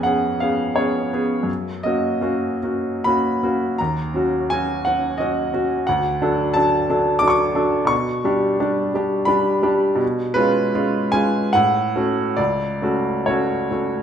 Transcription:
Already playing: F2 B3 C#4 G#4 G#5
0.03 B3 C#4 G#4 F#5
0.40 B3 C#4 G#4 F5
0.76 B3 C#4 G#4 C#5
1.13 B3 C#4 G#4
1.43 F#2
1.83 A#3 C#4 F#4 D#5
2.21 A#3 C#4 F#4
2.63 A#3 C#4 F#4
3.04 A#3 C#4 F#4 B5
3.43 A#3 C#4 F#4
3.78 D#2 A#5
4.14 F#3 C#4 F#4
4.50 F#3 C#4 F#4 G#5
4.85 F#3 C#4 F#4 F#5
5.18 F#3 C#4 F#4 D#5
5.54 F#3 C#4 F#4
5.87 D2 F#5
6.22 F#3 D4 A4
6.54 F#3 D4 A4 A5
6.90 F#3 D4 A4
7.19 F#3 D4 A4 D6
7.28 C#6 D6
7.55 F#3 D4 A4
7.85 B2 C#6
8.24 G3 D4 G4
8.60 G3 D4 G4
8.94 G3 D4 G4
9.25 G3 D4 G4 B5
9.63 G3 D4 G4
9.95 B2
10.34 G#3 C#4 F4 B4
10.75 G#3 C#4 F4
11.12 G#3 C#4 F4 G#5
11.53 A2 F#5
11.96 A3 C#4 F#4
12.37 C#2 D5
12.82 A3 C#4 F#4
13.26 A3 C#4 F#4 C#5
13.71 A3 C#4 F#4

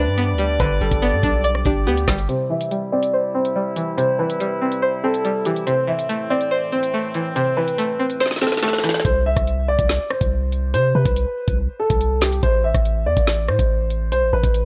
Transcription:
Already playing: B2 G3 D4 B4 D5
0.07 G2
0.18 B3, closed hi-hat
0.33 D2
0.38 G3, closed hi-hat
0.60 G1 D3 B4, kick, closed hi-hat
0.81 G1 G3 A4
0.92 G1, kick, closed hi-hat
1.02 B3 D5
1.13 G2
1.23 B1 D4, kick, closed hi-hat
1.44 D5, closed hi-hat
1.55 cross-stick
1.65 G1 D4 G4, kick, closed hi-hat
1.87 D2 B3 G4
1.97 closed hi-hat
2.08 G1 G3, kick, cross-stick, snare
2.18 closed hi-hat
2.29 C3 G3 E4 C5, closed hi-hat
2.50 E3 E5
2.61 closed hi-hat
2.71 G3, closed hi-hat
2.92 C4 D5
3.03 closed hi-hat
3.13 C5
3.35 C4 C5
3.45 closed hi-hat
3.56 G3
3.76 E3, closed hi-hat
3.98 C3 C5, closed hi-hat
4.19 E3 B4
4.30 closed hi-hat
4.40 G3, closed hi-hat
4.61 C4
4.72 closed hi-hat
4.82 C5
5.04 C4 A4
5.14 closed hi-hat
5.25 G3, closed hi-hat
5.45 E3 G4, closed hi-hat
5.56 closed hi-hat
5.67 A2 C3 E3 C4 C5, closed hi-hat
5.87 E3 E5
5.99 closed hi-hat
6.09 A3, closed hi-hat
6.30 C4 D5
6.41 closed hi-hat
6.51 C5
6.72 C4 C5
6.83 closed hi-hat
6.94 A3
7.14 E3, closed hi-hat
7.36 C3 C5, closed hi-hat
7.57 E3 B4
7.68 closed hi-hat
7.78 A3, closed hi-hat
7.99 C4
8.10 closed hi-hat
8.20 C5, snare
8.26 snare
8.31 snare
8.36 snare
8.42 C4 A4, snare
8.47 snare
8.52 snare, closed hi-hat
8.57 snare
8.62 A3 A4, snare, closed hi-hat
8.68 snare
8.73 snare
8.78 snare
8.83 E3, snare, closed hi-hat
8.89 snare
8.94 snare, closed hi-hat
9.00 snare
9.05 C2 C5, kick, closed hi-hat
9.26 E5
9.37 C2, kick, cross-stick, closed hi-hat
9.47 closed hi-hat
9.68 D5
9.79 C2, kick, closed hi-hat
9.89 snare
10.10 C5, cross-stick
10.21 C2, kick, closed hi-hat
10.52 closed hi-hat
10.74 C3 C5, closed hi-hat
10.95 C3 B4
11.06 C2, kick, closed hi-hat
11.16 closed hi-hat
11.48 C2, kick, closed hi-hat
11.80 A4
11.90 C2, kick, closed hi-hat
12.01 closed hi-hat
12.21 G4, snare, closed hi-hat
12.32 closed hi-hat
12.43 A1 C5, kick, closed hi-hat
12.64 E5
12.75 A1, kick, cross-stick, closed hi-hat
12.85 closed hi-hat
13.06 E2 D5
13.17 A1, kick, closed hi-hat
13.27 snare
13.48 A2 C5, cross-stick
13.59 A1, kick, closed hi-hat
13.90 closed hi-hat
14.12 B1 C5, closed hi-hat
14.22 A1
14.33 A1 B4
14.44 A1, kick, closed hi-hat
14.54 closed hi-hat

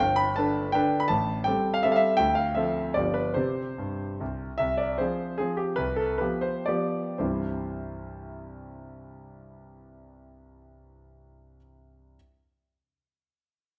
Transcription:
Already playing: G5
0.00 G1
0.16 B5
0.36 D3 D4 B4 A5
0.72 D3 D4 B4 G5
1.00 B5
1.08 A1 A5
1.44 G3 C4 A4 G5
1.74 F5
1.83 G3 C4 A4 E5
1.92 F5
1.96 E5
2.17 D2 G5
2.35 F5
2.55 F3 C4 A4 E5
2.94 G1 F3 B3 G4 D5
3.14 B4
3.34 C3 C4 G4 C5
3.78 G2
4.20 C2
4.58 C2 E5
4.77 D5
4.98 F3 C4 G#4 C5
5.38 F3 C4 G#4
5.57 G4
5.76 C2 B4
5.96 A4
6.18 F3 B3 G4 B4
6.41 C5
6.66 F3 B3 G4 D5
7.18 C2 G2 E3 G3 C4 E4 C5

